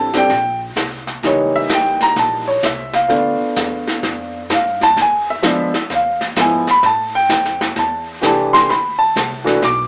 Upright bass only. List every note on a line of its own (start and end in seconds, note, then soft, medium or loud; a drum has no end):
0.00 0.28 A1 medium
0.30 0.75 A#1 loud
0.76 1.21 C2 medium
1.23 1.68 C#2 medium
1.70 2.15 A1 medium
2.16 2.61 A#1 medium
2.63 3.08 C2 medium
3.09 3.38 D2 medium
3.41 muted upright bass stroke soft
3.57 4.02 E2 medium
4.03 4.48 F2 medium
4.50 4.95 G2 loud
4.96 5.42 E2 medium
5.43 5.72 D2 medium
5.73 muted upright bass stroke soft
5.90 6.35 E2 medium
6.36 6.81 G#2 medium
6.83 7.28 A2 medium
7.29 7.74 F2 medium
7.76 8.21 E2 medium
8.22 8.67 C2 medium
8.70 9.14 D2 medium
9.16 9.61 C2 medium
9.62 9.88 B1 medium